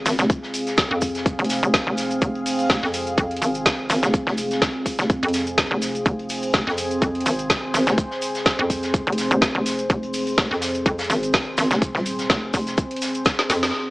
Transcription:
Already playing: ambient pad C4 G#4 F5
0.06 fm bass G#1, snare, open hi-hat, cabasa, shaker
0.18 fm bass F1, snare, closed hi-hat, cabasa
0.30 kick, closed hi-hat, cabasa, shaker
0.43 snare
0.54 open hi-hat, cabasa, shaker
0.67 snare, closed hi-hat, cabasa
0.77 kick, snare, closed hi-hat, cabasa, shaker
0.91 fm bass F2
1.01 kick, open hi-hat, cabasa, shaker
1.15 snare, closed hi-hat, cabasa
1.26 kick, closed hi-hat, cabasa, shaker
1.39 fm bass F1, closed hi-hat
1.44 closed hi-hat
1.50 snare, open hi-hat, cabasa, shaker
1.63 fm bass F1, closed hi-hat, cabasa
1.74 kick, snare, closed hi-hat, cabasa, shaker
1.87 fm bass F1
1.97 snare, open hi-hat, cabasa, shaker
2.11 closed hi-hat, cabasa
2.21 fm bass F1, kick, closed hi-hat, cabasa, shaker
2.35 closed hi-hat
2.46 open hi-hat, cabasa
2.59 closed hi-hat, cabasa
2.70 fm bass F1, kick, snare, closed hi-hat, cabasa, shaker
2.83 fm bass F2, snare
2.94 open hi-hat, cabasa, shaker
3.07 closed hi-hat, cabasa
3.18 fm bass F2, kick, closed hi-hat, cabasa, shaker
3.31 closed hi-hat
3.37 closed hi-hat
3.42 fm bass G#1, open hi-hat, cabasa, shaker
3.55 closed hi-hat, cabasa
3.66 kick, snare, closed hi-hat, cabasa, shaker
3.89 fm bass G#1, snare, open hi-hat, cabasa, shaker
4.03 fm bass F1, snare, closed hi-hat, cabasa
4.14 kick, closed hi-hat, cabasa, shaker
4.27 fm bass F1, snare
4.38 open hi-hat, cabasa, shaker
4.51 snare, closed hi-hat, cabasa
4.62 kick, snare, closed hi-hat, cabasa, shaker
4.86 kick, open hi-hat, cabasa, shaker
4.98 fm bass F1, snare, closed hi-hat, cabasa
5.10 kick, closed hi-hat, cabasa, shaker
5.23 fm bass F2, closed hi-hat
5.28 closed hi-hat
5.33 snare, open hi-hat, cabasa, shaker
5.47 closed hi-hat, cabasa
5.58 kick, snare, closed hi-hat, cabasa, shaker
5.71 fm bass F1
5.81 snare, open hi-hat, cabasa, shaker
5.95 closed hi-hat, cabasa
6.05 fm bass F1, ambient pad C5, kick, closed hi-hat, cabasa, shaker
6.19 closed hi-hat
6.29 open hi-hat, cabasa
6.43 closed hi-hat, cabasa
6.53 fm bass F1, kick, snare, closed hi-hat, cabasa, shaker
6.67 fm bass F2, snare
6.78 open hi-hat, cabasa, shaker
6.91 closed hi-hat, cabasa
7.02 fm bass F2, kick, closed hi-hat, cabasa, shaker
7.15 closed hi-hat
7.21 closed hi-hat
7.26 fm bass G#1, open hi-hat, cabasa, shaker
7.39 closed hi-hat, cabasa
7.50 kick, snare, closed hi-hat, cabasa, shaker
7.74 fm bass G#1, snare, open hi-hat, cabasa, shaker
7.86 fm bass F1, snare, closed hi-hat, cabasa
7.97 kick, closed hi-hat, cabasa, shaker
8.11 snare
8.22 open hi-hat, cabasa, shaker
8.35 snare, closed hi-hat, cabasa
8.46 kick, snare, closed hi-hat, cabasa, shaker
8.59 fm bass F2
8.70 kick, open hi-hat, cabasa, shaker
8.83 snare, closed hi-hat, cabasa
8.94 kick, closed hi-hat, cabasa, shaker
9.07 fm bass F1, closed hi-hat
9.12 closed hi-hat
9.18 snare, open hi-hat, cabasa, shaker
9.31 fm bass F1, closed hi-hat, cabasa
9.41 kick, snare, closed hi-hat, cabasa, shaker
9.55 fm bass F1
9.66 snare, open hi-hat, cabasa, shaker
9.79 closed hi-hat, cabasa
9.90 fm bass F1, kick, closed hi-hat, cabasa, shaker
10.03 closed hi-hat
10.14 open hi-hat, cabasa
10.27 closed hi-hat, cabasa
10.38 fm bass F1, kick, snare, closed hi-hat, cabasa, shaker
10.51 fm bass F2, snare
10.61 snare, open hi-hat, cabasa, shaker
10.75 closed hi-hat, cabasa
10.86 fm bass F2, kick, closed hi-hat, cabasa, shaker
10.99 snare, closed hi-hat, shaker
11.04 closed hi-hat
11.10 fm bass G#1, snare, open hi-hat, cabasa
11.23 closed hi-hat, cabasa, shaker
11.33 kick, snare, closed hi-hat, cabasa, shaker
11.57 fm bass G#1, snare, open hi-hat, cabasa, shaker
11.71 fm bass F1, snare, closed hi-hat, cabasa
11.82 kick, closed hi-hat, cabasa, shaker
11.95 fm bass D#1, snare
12.06 open hi-hat, cabasa, shaker
12.19 snare, closed hi-hat, cabasa
12.30 fm bass F1, kick, snare, closed hi-hat, cabasa, shaker
12.54 fm bass F1, kick, open hi-hat, cabasa, shaker
12.66 snare, closed hi-hat, cabasa
12.77 kick, closed hi-hat, cabasa, shaker
12.91 closed hi-hat
12.96 closed hi-hat
13.01 snare, open hi-hat, cabasa, shaker
13.15 closed hi-hat, cabasa
13.25 kick, snare, closed hi-hat, cabasa, shaker
13.39 snare
13.50 fm bass F2, snare, open hi-hat, cabasa, shaker
13.63 snare, open hi-hat, cabasa

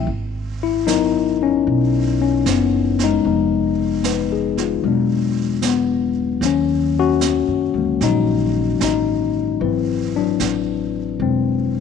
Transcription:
Already playing: tine electric piano E4
0.07 upright bass G#1, brush sweep
0.63 tine electric piano E4
0.87 tine electric piano F#3 B3 D#4 A#4, snare, hi-hat pedal
0.91 tine electric piano D#4
1.43 tine electric piano C#4
1.67 upright bass B1, brush sweep
2.21 tine electric piano C#4
2.46 upright bass F#1, tine electric piano B3, snare, hi-hat pedal
2.99 snare
3.04 tine electric piano G#3 D#4
3.25 upright bass F1, tine electric piano F3 G#3 B3 D#4, brush sweep
4.04 tine electric piano B4, snare, hi-hat pedal
4.32 tine electric piano G#4
4.57 tine electric piano F4, snare
4.83 upright bass E1, tine electric piano F#3 G#3 B3, brush sweep
4.88 tine electric piano D4
5.62 tine electric piano B3, snare, hi-hat pedal
6.41 upright bass D#2, tine electric piano D#3 F#3 A#3, brush sweep, snare
6.45 tine electric piano C#4
6.99 tine electric piano C#4 F#4
7.21 snare, hi-hat pedal
7.47 upright bass F#2
7.74 upright bass D2, tine electric piano F#3 G#3 A#3
8.01 upright bass A#1, tine electric piano F#3 D#4, brush sweep, snare
8.80 upright bass A1, tine electric piano D#4, snare, hi-hat pedal
9.60 upright bass G#1, tine electric piano E3 F#3 E4 B4, brush sweep
9.64 tine electric piano C4
10.16 tine electric piano F#3 D4
10.40 upright bass A1, snare, hi-hat pedal
11.19 upright bass E1, tine electric piano F#3 G#3 C4, brush sweep

